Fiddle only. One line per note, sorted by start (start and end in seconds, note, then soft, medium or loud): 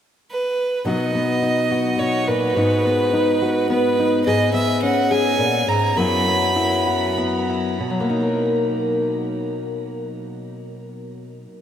0.31 0.83 B4 medium
0.87 2.00 D#5 medium
1.99 2.29 C#5 medium
2.28 3.69 B4 medium
3.69 4.22 B4 medium
4.26 4.52 D#5 medium
4.53 4.80 E5 medium
4.82 5.12 F#5 medium
5.11 5.70 G#5 medium
5.69 5.99 A#5 medium
5.97 7.18 B5 medium